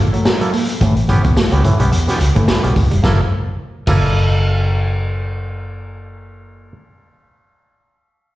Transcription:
0.00 0.11 A1 loud
0.13 0.24 F#3 medium
0.13 0.23 A3 medium
0.13 closed hi-hat medium
0.25 0.39 F#3 medium
0.25 muted clean electric guitar stroke soft
0.25 snare loud
0.25 tambourine medium
0.41 0.51 F#3 medium
0.41 0.52 A#3 medium
0.41 0.52 E4 medium
0.41 0.52 A4 medium
0.41 closed hi-hat medium
0.53 0.66 A#3 medium
0.53 0.59 E4 soft
0.53 0.59 A4 medium
0.53 open hi-hat medium
0.53 tambourine medium
0.69 closed hi-hat medium
0.69 tambourine soft
0.81 1.18 A1 loud
0.81 0.95 A2 medium
0.81 0.95 E3 medium
0.81 0.94 A3 medium
0.81 kick loud
0.81 closed hi-hat medium
0.81 tambourine medium
0.96 closed hi-hat medium
1.08 1.22 B3 medium
1.08 1.23 C#4 medium
1.08 1.23 G4 medium
1.08 muted clean electric guitar stroke soft
1.08 kick medium
1.08 closed hi-hat medium
1.08 tambourine medium
1.24 1.35 C#2 medium
1.24 1.34 B3 medium
1.24 1.29 C#4 soft
1.24 1.29 G4 soft
1.24 kick medium
1.24 closed hi-hat medium
1.24 tambourine soft
1.36 1.50 A3 medium
1.36 snare loud
1.36 tambourine loud
1.51 1.62 C#2 medium
1.51 1.63 B3 medium
1.51 1.63 C#4 medium
1.51 1.63 G4 medium
1.51 muted clean electric guitar stroke soft
1.51 closed hi-hat medium
1.64 1.78 A2 medium
1.64 1.78 E3 medium
1.64 kick medium
1.64 closed hi-hat medium
1.64 tambourine soft
1.79 1.90 B1 medium
1.79 1.90 G3 medium
1.79 1.91 B3 medium
1.79 1.91 C#4 medium
1.79 1.91 G4 medium
1.79 closed hi-hat medium
1.92 2.06 E2 loud
1.92 2.05 B3 medium
1.92 closed hi-hat medium
1.92 tambourine medium
2.07 2.19 B3 medium
2.07 2.19 C#4 medium
2.07 2.19 G4 medium
2.07 snare soft
2.07 closed hi-hat medium
2.07 tambourine soft
2.20 2.34 C#2 medium
2.20 muted clean electric guitar stroke soft
2.20 closed hi-hat medium
2.20 tambourine soft
2.35 2.46 A1 medium
2.35 2.46 A2 medium
2.35 2.47 E3 medium
2.35 2.46 A3 medium
2.35 kick medium
2.35 closed hi-hat medium
2.48 2.62 A2 medium
2.48 2.62 E3 medium
2.48 snare loud
2.48 tambourine medium
2.63 2.75 B1 medium
2.63 2.74 G3 medium
2.63 2.74 B3 medium
2.63 2.74 C#4 medium
2.63 2.74 G4 medium
2.63 closed hi-hat medium
2.75 2.89 C#2 medium
2.75 2.82 C#4 soft
2.75 2.82 G4 soft
2.75 muted clean electric guitar stroke soft
2.75 kick medium
2.75 open hi-hat medium
2.75 tambourine soft
2.91 3.02 F1 medium
2.91 3.02 G3 medium
2.91 closed hi-hat medium
3.03 3.21 F#1 medium
3.03 3.15 F#3 medium
3.03 3.20 A#3 loud
3.03 3.20 E4 medium
3.03 3.21 A4 medium
3.03 kick loud
3.03 snare medium
3.03 tambourine medium
3.87 6.73 F#1 loud
3.87 3.98 F#3 medium
3.87 6.72 A#3 loud
3.87 6.73 E4 medium
3.87 6.73 A4 loud
3.87 kick loud
3.87 crash medium
3.87 tambourine medium

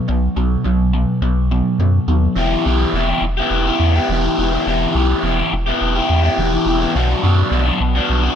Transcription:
0.08 0.29 B1 loud
0.08 0.34 B2 medium
0.08 0.34 F#3 medium
0.36 0.57 B1 medium
0.36 0.63 B2 medium
0.36 0.63 F#3 medium
0.65 1.06 B1 loud
0.65 0.91 B2 medium
0.65 0.91 F#3 medium
0.93 1.20 B2 medium
0.93 1.20 F#3 medium
1.21 1.62 B1 medium
1.21 1.48 B2 medium
1.21 1.48 F#3 loud
1.51 1.77 B2 medium
1.51 1.77 F#3 medium
1.79 1.99 F#2 medium
1.79 2.06 B2 medium
1.79 2.06 F#3 medium
2.07 2.28 D#2 medium
2.07 2.34 B2 medium
2.07 2.34 F#3 medium
2.36 2.56 E1 loud
2.36 2.65 E3 loud
2.36 2.65 B3 medium
2.36 2.67 E4 medium
2.36 2.67 G4 loud
2.66 2.85 B1 loud
2.66 2.94 E3 medium
2.66 2.95 B3 medium
2.66 2.96 E4 medium
2.66 2.97 G4 medium
2.93 3.13 E1 loud
2.93 3.24 E3 loud
2.93 3.11 B3 medium
2.93 3.10 E4 loud
2.97 3.09 G4 loud
3.09 3.24 B3 medium
3.09 3.25 E4 medium
3.09 3.24 G4 medium
3.21 3.42 E1 medium
3.21 muted overdriven electric guitar stroke soft
3.37 3.69 B3 medium
3.37 3.67 E4 medium
3.37 3.66 G4 medium
3.50 3.71 E1 loud
3.67 3.98 B3 medium
3.67 3.96 E4 medium
3.67 3.94 G4 medium
3.79 3.99 E2 medium
3.95 4.11 B3 medium
3.95 4.11 E4 medium
3.95 4.12 G4 medium
4.09 4.29 E1 loud
4.09 4.37 E3 loud
4.09 4.26 B3 loud
4.09 4.24 E4 loud
4.13 4.23 G4 loud
4.24 4.39 B3 medium
4.24 4.39 E4 medium
4.24 4.40 G4 medium
4.38 4.58 E1 loud
4.38 4.65 E3 medium
4.38 4.54 B3 medium
4.38 4.53 E4 medium
4.38 4.51 G4 medium
4.53 4.67 B3 medium
4.53 4.67 E4 medium
4.53 4.68 G4 medium
4.66 4.86 E1 loud
4.66 4.94 E3 loud
4.66 4.96 B3 loud
4.66 4.96 E4 loud
4.66 4.97 G4 loud
4.94 5.14 B1 loud
4.94 5.23 E3 medium
4.94 5.24 B3 medium
4.94 5.24 E4 medium
4.94 5.25 G4 medium
5.23 5.43 E1 loud
5.23 5.52 E3 medium
5.23 5.40 B3 loud
5.23 5.38 E4 loud
5.23 5.37 G4 loud
5.38 5.53 B3 medium
5.38 5.52 E4 medium
5.38 5.53 G4 medium
5.53 5.72 E1 medium
5.53 muted overdriven electric guitar stroke soft
5.67 5.97 B3 medium
5.67 5.96 E4 medium
5.67 5.94 G4 medium
5.81 6.01 E1 loud
5.95 6.25 B3 medium
5.95 6.24 E4 medium
5.95 6.22 G4 medium
6.09 6.29 E2 medium
6.23 6.39 B3 medium
6.23 6.39 E4 medium
6.23 6.40 G4 medium
6.38 6.58 E1 loud
6.38 6.64 E3 loud
6.38 6.54 B3 loud
6.38 6.53 E4 loud
6.38 6.51 G4 loud
6.52 6.67 B3 medium
6.52 6.66 E4 medium
6.52 6.67 G4 medium
6.66 6.86 E1 loud
6.66 6.93 E3 medium
6.66 6.82 B3 medium
6.66 6.80 E4 medium
6.66 6.79 G4 medium
6.80 6.96 B3 medium
6.80 6.94 E4 medium
6.80 6.93 G4 medium
6.94 7.15 B1 loud
6.94 7.50 B2 loud
6.94 7.22 F#3 loud
6.94 7.23 B3 loud
6.94 7.24 D4 loud
6.94 7.24 F#4 loud
7.22 7.43 F#2 loud
7.22 7.51 F#3 medium
7.22 7.52 B3 medium
7.22 7.52 D4 medium
7.22 7.53 F#4 medium
7.50 7.71 B1 loud
7.50 8.35 B2 medium
7.50 7.81 F#3 loud
7.50 7.68 B3 loud
7.50 7.66 D4 loud
7.50 7.65 F#4 loud
7.65 7.81 B3 medium
7.65 7.81 D4 medium
7.65 7.81 F#4 medium
7.80 8.00 B1 medium
7.80 muted overdriven electric guitar stroke soft
7.95 8.24 B3 medium
7.95 8.23 D4 medium
7.95 8.23 F#4 medium
8.09 8.29 B1 medium
8.23 8.35 B3 medium
8.23 8.35 D4 medium
8.23 8.35 F#4 medium

